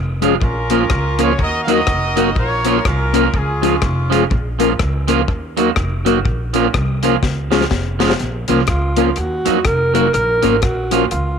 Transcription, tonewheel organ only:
0.21 0.34 G#3 medium
0.21 0.35 C#4 medium
0.21 0.35 F4 medium
0.21 0.35 G#4 loud
0.70 0.83 A#3 medium
0.70 0.83 C#4 medium
0.70 0.84 F4 medium
0.70 0.84 A#4 medium
1.19 1.32 A#3 medium
1.19 1.32 C#4 medium
1.19 1.32 F4 medium
1.19 1.32 A#4 medium
1.68 1.80 A#3 medium
1.68 1.81 D#4 medium
1.68 1.81 F#4 medium
1.68 1.81 A#4 loud
2.17 2.29 A#3 medium
2.17 2.29 D#4 medium
2.17 2.30 F#4 medium
2.17 2.30 A#4 loud
2.65 2.78 A#3 medium
2.65 2.78 C#4 medium
2.65 2.78 F4 medium
2.65 2.78 A#4 medium
3.13 3.26 A#3 medium
3.13 3.26 C#4 medium
3.13 3.27 F4 medium
3.13 3.27 A#4 loud
3.62 3.75 G#3 medium
3.62 3.75 C#4 medium
3.62 3.75 F4 medium
3.62 3.76 G#4 medium
4.10 4.23 G#3 medium
4.10 4.24 C#4 medium
4.10 4.24 F4 medium
4.10 4.24 G#4 loud
4.59 4.72 A#3 medium
4.59 4.72 C#4 medium
4.59 4.73 F4 medium
4.59 4.73 A#4 loud
5.08 5.21 A#3 medium
5.08 5.21 C#4 medium
5.08 5.21 F4 medium
5.08 5.22 A#4 loud
5.57 5.70 A#3 medium
5.57 5.70 D#4 medium
5.57 5.70 F#4 medium
5.57 5.70 A#4 loud
6.05 6.18 A#3 medium
6.05 6.18 D#4 medium
6.05 6.19 F#4 medium
6.05 6.19 A#4 loud
6.54 6.67 A#3 medium
6.54 6.67 C#4 medium
6.54 6.67 F4 medium
6.54 6.67 A#4 loud
7.03 7.16 A#3 medium
7.03 7.16 C#4 medium
7.03 7.16 F4 medium
7.03 7.16 A#4 medium
7.51 7.64 G#3 medium
7.51 7.64 C#4 medium
7.51 7.64 F4 medium
7.51 7.65 G#4 medium
8.00 8.13 G#3 medium
8.00 8.13 C#4 medium
8.00 8.13 F4 medium
8.00 8.13 G#4 loud
8.48 8.61 A#3 medium
8.48 8.61 C#4 medium
8.48 8.62 F4 medium
8.48 8.62 A#4 medium
8.97 9.10 A#3 medium
8.97 9.10 C#4 medium
8.97 9.10 F4 medium
8.97 9.10 A#4 loud
9.45 9.58 A#3 medium
9.45 9.58 D#4 medium
9.45 9.59 F#4 medium
9.45 9.59 A#4 medium
9.94 10.07 A#3 medium
9.94 10.07 D#4 medium
9.94 10.07 F#4 medium
9.94 10.07 A#4 medium
10.43 10.56 A#3 medium
10.43 10.56 C#4 medium
10.43 10.56 F4 medium
10.43 10.56 A#4 loud
10.91 11.04 A#3 medium
10.91 11.04 C#4 medium
10.91 11.04 F4 medium
10.91 11.04 A#4 loud

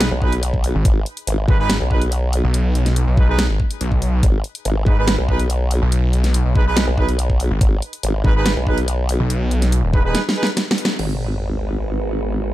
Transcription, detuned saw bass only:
0.75 0.83 G#1 loud
1.48 1.79 G#1 loud
2.44 3.05 B1 loud
3.07 3.48 B1 loud
3.49 3.58 G#1 loud
3.81 4.21 B1 loud
4.86 5.17 G#1 loud
5.82 6.43 B1 loud
6.45 6.86 B1 loud
7.51 7.59 G#1 loud
8.24 8.55 G#1 medium
9.20 9.82 B1 loud
9.83 10.15 D#1 loud

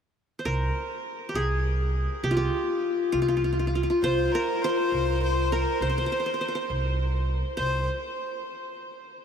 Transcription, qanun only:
0.39 1.45 C5 medium
0.45 1.58 A#4 medium
1.29 1.41 G4 medium
1.35 2.30 G#4 medium
2.24 2.36 G4 medium
2.31 3.12 F4 medium
2.37 3.62 G4 medium
3.12 3.21 F4 medium
3.22 3.28 F4 medium
3.28 3.36 F4 medium
3.37 3.44 F4 soft
3.44 3.52 F4 soft
3.53 3.59 F4 soft
3.59 3.67 F4 soft
3.67 3.75 F4 soft
3.75 3.83 F4 medium
3.83 3.90 F4 soft
3.90 5.24 F4 medium
4.04 4.64 C5 medium
4.35 5.48 A#4 medium
4.64 5.70 C5 medium
5.52 6.65 A#4 medium
5.82 5.88 C5 medium
5.90 5.96 C5 medium
5.98 6.04 C5 medium
6.06 6.11 C5 medium
6.12 6.18 C5 medium
6.20 6.25 C5 soft
6.26 6.33 C5 medium
6.34 6.40 C5 soft
6.41 6.47 C5 medium
6.48 6.54 C5 medium
6.55 6.62 C5 medium
7.57 7.86 C5 medium

